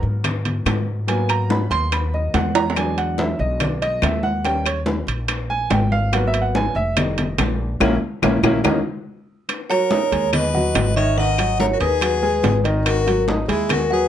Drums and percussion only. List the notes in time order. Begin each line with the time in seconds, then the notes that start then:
0.03 high conga
0.24 high bongo, high conga, low conga, high timbale, claves
0.45 high conga, low conga, high timbale
0.66 high bongo, low bongo, high conga, high timbale, low timbale, claves
1.08 high bongo, high conga, high timbale
1.29 high conga, high timbale, claves
1.50 high bongo, high conga, low timbale
1.71 high bongo, high conga, high timbale
1.92 high bongo, high conga, high timbale, claves
2.14 high bongo, high conga
2.34 high bongo, low bongo, high conga, high timbale, low timbale
2.55 high bongo, high conga, high timbale
2.70 low timbale
2.76 high bongo, high timbale, claves
2.98 high conga, high timbale
3.18 high bongo, high conga, low timbale
3.40 high conga
3.60 high bongo, high conga, low conga, high timbale, claves
3.82 high conga, high timbale
4.02 high bongo, low bongo, high conga, high timbale, low timbale, claves
4.23 high conga
4.45 high bongo, high conga, high timbale
4.65 high conga, high timbale, claves
4.86 high bongo, high conga, low timbale
5.07 high bongo, high conga, high timbale
5.28 high bongo, high conga, high timbale, claves
5.50 high bongo, high conga
5.70 high bongo, low bongo, high conga, high timbale, low timbale
5.92 high bongo, high conga
6.13 high bongo, high conga, high timbale, claves
6.34 high conga, high timbale
6.55 high bongo, high conga, low timbale
6.77 high conga
6.97 high bongo, high conga, low conga, high timbale, claves
7.18 high conga, low conga, high timbale
7.38 high bongo, low bongo, high conga, high timbale, low timbale, claves
7.80 low bongo, high conga, high timbale, claves
8.23 low bongo, high conga, high timbale, claves
8.43 low bongo, high conga, high timbale, claves
8.64 low bongo, high conga, high timbale, claves
9.49 high bongo, high conga, high timbale, claves
9.70 high bongo, high conga, high timbale
9.91 high bongo, high conga, low timbale
10.12 high bongo, high conga, high timbale
10.33 high bongo, high conga, low conga, high timbale, claves
10.54 high conga, low conga
10.75 high bongo, low bongo, high conga, high timbale, low timbale, claves
10.96 high bongo, high conga, high timbale
11.18 high bongo, high conga
11.38 high bongo, high conga, high timbale, claves
11.59 high bongo, high conga, low timbale
11.81 high bongo, high timbale
12.01 high bongo, high conga, high timbale, claves
12.24 high conga
12.43 high bongo, low bongo, high conga, high timbale, low timbale
12.64 high bongo, high conga, high timbale
12.86 high bongo, high conga, high timbale, claves
13.07 high bongo, high conga, high timbale
13.28 high bongo, high conga, low timbale
13.49 high bongo, high conga, high timbale
13.69 high bongo, high conga, low conga, high timbale, claves
13.92 high conga